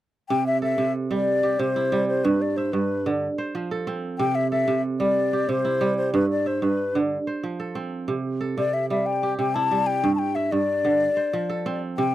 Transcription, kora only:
0.30 0.77 C3 medium
0.62 1.94 A4 medium
0.78 1.58 C3 medium
1.11 1.91 G3 medium
1.43 2.84 G4 medium
1.59 2.29 C3 medium
1.76 3.33 E4 medium
1.92 2.29 G3 medium
2.25 2.72 G2 medium
2.58 3.61 E5 medium
2.73 3.26 G2 medium
3.06 3.26 D3 medium
3.38 4.57 C5 medium
3.55 4.24 F3 medium
3.71 4.51 A4 medium
3.87 5.67 C4 medium
4.19 4.66 C3 medium
4.52 5.84 A4 medium
4.68 5.48 C3 medium
5.00 5.80 G3 medium
5.33 6.74 G4 medium
5.49 6.18 C3 medium
5.65 7.21 E4 medium
5.81 6.18 G3 medium
6.14 6.61 G2 medium
6.46 7.49 E5 medium
6.62 7.16 G2 medium
6.95 7.16 D3 medium
7.27 8.46 C5 medium
7.43 8.13 F3 medium
7.60 8.40 A4 medium
7.75 9.55 C4 medium
8.08 8.56 C3 medium
8.41 9.72 A4 medium
8.58 9.37 C3 medium
8.90 9.70 G3 medium
9.23 10.64 G4 medium
9.39 10.08 C3 medium
9.55 11.12 E4 medium
9.71 10.08 G3 medium
10.04 10.51 G2 medium
10.36 11.39 E5 medium
10.52 11.06 G2 medium
10.85 11.06 D3 medium
11.17 12.15 C5 medium
11.33 12.03 F3 medium
11.49 12.15 A4 medium
11.66 12.15 C4 medium
11.98 12.15 C3 medium

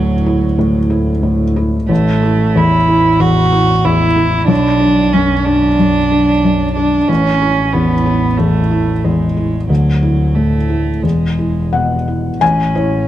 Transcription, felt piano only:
0.00 0.55 D2 medium
0.00 0.46 A2 soft
0.00 0.14 E4 medium
0.26 0.79 E4 medium
0.59 1.11 A2 medium
0.90 1.43 E4 medium
1.23 1.76 A2 medium
1.56 1.90 E4 medium
1.89 3.16 A1 medium
2.23 2.76 E4 medium
2.56 3.08 E2 medium
2.88 3.40 E4 medium
3.20 3.72 E2 medium
3.52 4.05 E4 medium
3.85 4.37 E2 medium
4.16 4.49 E4 medium
4.47 5.74 B1 medium
4.80 5.33 D4 medium
5.14 5.66 F#2 medium
5.46 5.98 D4 medium
5.79 6.31 F#2 medium
6.12 6.64 D4 medium
6.44 6.96 F#2 medium
6.77 7.09 D4 medium
7.09 8.34 A1 medium
7.42 7.93 E4 medium
7.74 8.26 E2 soft
8.06 8.58 E4 medium
8.39 8.91 E2 soft
8.71 9.23 E4 soft
9.05 9.56 E2 soft
9.37 9.69 E4 soft
9.70 11.00 D2 medium
10.03 10.56 E4 soft
10.36 10.90 A2 soft
10.70 11.04 E4 soft
11.04 12.37 E2 soft
11.39 11.94 E4 soft
11.73 12.28 B2 soft
11.73 12.37 F#5 medium
12.08 12.41 E4 soft
12.41 12.73 A1 medium
12.41 13.08 G#5 medium
12.75 13.04 E4 medium
12.75 13.05 C#5 medium

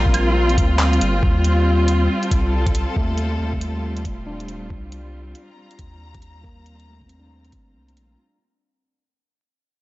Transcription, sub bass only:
0.00 0.59 A#1 medium
0.57 0.99 D2 medium
1.01 1.21 G1 medium
1.23 2.08 D#2 medium
2.31 2.86 C2 loud
2.96 3.38 D#2 medium
3.39 4.06 D#2 medium
4.05 4.72 D#1 loud
4.70 5.34 C2 medium
5.79 7.54 D#2 medium
7.53 7.76 G1 medium
7.74 7.97 C2 medium
7.96 8.16 A#1 medium

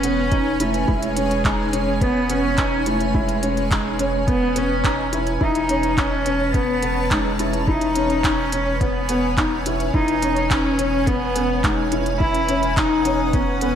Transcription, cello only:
0.00 0.62 C#4 loud
0.61 0.91 A3 medium
0.89 2.04 G#3 loud
2.02 2.32 B3 loud
2.30 2.88 C#4 loud
2.87 3.16 A3 medium
3.15 4.28 G#3 loud
4.29 4.59 B3 loud
4.58 5.13 C#4 medium
5.43 6.00 D#4 loud
5.99 6.55 C#4 loud
6.55 7.13 B3 loud
7.11 7.54 G#3 loud
7.67 8.26 D#4 loud
8.24 8.74 C#4 loud
8.74 8.82 C#4 medium
8.81 9.65 B3 medium
9.94 10.52 D#4 loud
10.50 11.08 C#4 loud
11.07 11.65 B3 loud
11.63 12.06 G#3 medium
12.19 12.78 E4 loud
12.76 13.35 D#4 loud
13.33 13.75 C#4 loud

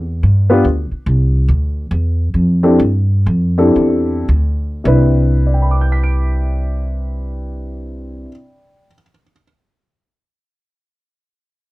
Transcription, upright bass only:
0.00 0.22 E2 medium
0.23 0.63 G2 medium
0.65 0.90 D2 medium
0.91 muted upright bass stroke soft
1.06 1.47 C2 loud
1.49 1.89 D2 loud
1.91 2.33 E2 loud
2.34 2.78 F2 medium
2.79 3.25 G2 loud
3.26 3.74 F2 medium
3.76 4.27 E2 medium
4.29 4.84 D2 medium
4.85 8.24 C2 loud

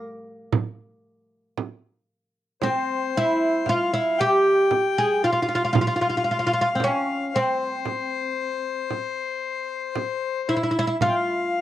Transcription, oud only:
2.63 3.16 C4 medium
3.17 3.69 E4 medium
3.69 3.93 F4 medium
3.94 4.20 E4 medium
4.21 4.98 G4 medium
4.98 5.24 G#4 medium
5.24 5.31 F4 medium
5.32 5.39 F4 medium
5.42 5.47 F4 medium
5.48 5.54 F4 soft
5.55 5.62 F4 medium
5.65 5.70 F4 medium
5.73 5.78 F4 medium
5.81 5.86 F4 medium
5.87 5.93 F4 medium
5.96 6.00 F4 medium
6.01 6.07 F4 medium
6.10 6.15 F4 soft
6.17 6.23 F4 soft
6.24 6.30 F4 soft
6.31 6.37 F4 medium
6.39 6.45 F4 medium
6.47 6.52 F4 medium
6.53 6.60 F4 medium
6.61 6.67 F4 medium
6.75 6.81 C4 medium
6.84 7.35 C#4 medium
7.36 10.59 C4 medium
10.49 10.55 E4 medium
10.56 10.62 E4 soft
10.63 10.70 E4 soft
10.71 10.78 E4 soft
10.79 10.86 E4 medium
10.87 10.94 E4 medium
11.02 11.61 F4 loud

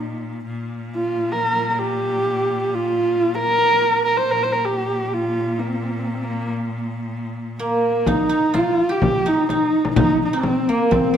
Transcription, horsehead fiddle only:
0.00 0.15 D#4 medium
0.95 1.33 F4 medium
1.32 1.70 A#4 medium
1.70 1.80 A#4 medium
1.79 2.76 G4 medium
2.74 3.36 F4 medium
3.34 4.04 A#4 loud
4.05 4.18 A#4 medium
4.17 4.32 C5 medium
4.31 4.45 A#4 medium
4.43 4.53 C5 medium
4.52 4.66 A#4 medium
4.65 5.04 G4 medium
5.04 5.15 G4 medium
5.14 5.61 F4 medium
5.59 5.69 A#3 medium
5.68 5.76 C4 medium
5.75 5.85 A#3 medium
5.83 5.92 C4 medium
5.90 6.00 A#3 medium
5.99 6.08 C4 medium
6.06 6.16 A#3 medium
6.14 6.26 C4 medium
6.24 6.50 A#3 medium
7.61 8.10 A#3 medium
8.08 8.58 D#4 medium
8.56 8.93 F4 medium
8.91 9.30 G4 medium
9.28 9.50 D#4 medium
9.50 9.93 D#4 medium
9.97 10.23 D#4 loud
10.25 10.36 D#4 medium
10.34 10.70 C4 loud
10.69 10.94 A#3 loud
10.93 11.17 C4 loud

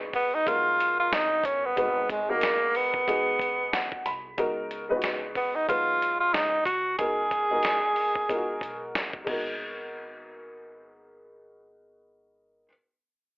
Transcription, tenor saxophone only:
0.15 0.36 B3 medium
0.35 0.49 D#4 medium
0.47 0.99 F4 loud
1.00 1.15 F4 medium
1.14 1.47 D#4 loud
1.46 1.67 C#4 medium
1.65 2.10 B3 medium
2.11 2.32 G#3 medium
2.30 2.78 A#3 medium
2.76 4.06 B3 medium
5.37 5.57 B3 medium
5.55 5.69 D#4 medium
5.69 6.17 F4 medium
6.20 6.35 F4 medium
6.33 6.65 D#4 medium
6.66 6.96 F#4 medium
6.98 8.90 G#4 medium

